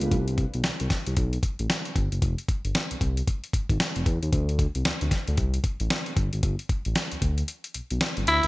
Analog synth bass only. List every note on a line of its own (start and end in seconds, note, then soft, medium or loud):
0.01 0.10 C#2 loud
0.12 0.46 C2 loud
0.54 0.62 B1 medium
0.64 0.71 C2 soft
0.80 0.88 C2 medium
1.07 1.15 C2 medium
1.17 1.38 B1 loud
1.59 1.67 A1 medium
1.96 2.09 G1 medium
2.12 2.20 F#1 medium
2.22 2.35 F1 loud
2.65 2.73 G1 medium
2.91 2.95 C2 soft
3.01 3.22 C2 loud
3.53 3.60 G#1 medium
3.70 3.78 G#1 loud
3.96 4.04 F1 medium
4.06 4.19 E2 medium
4.22 4.31 D#2 medium
4.33 4.67 D2 loud
4.75 4.83 C2 medium
4.86 4.92 D2 soft
5.02 5.10 D2 medium
5.28 5.36 D2 loud
5.38 5.59 C2 loud
5.80 5.88 A1 medium
6.17 6.30 G1 loud
6.33 6.41 G#1 medium
6.43 6.56 G1 loud
6.86 6.94 A1 medium
7.12 7.16 D2 soft
7.22 7.43 D2 medium
7.75 7.81 B1 medium
7.91 7.99 B1 medium
8.17 8.25 G1 medium
8.28 8.40 D2 medium
8.44 8.47 C#2 medium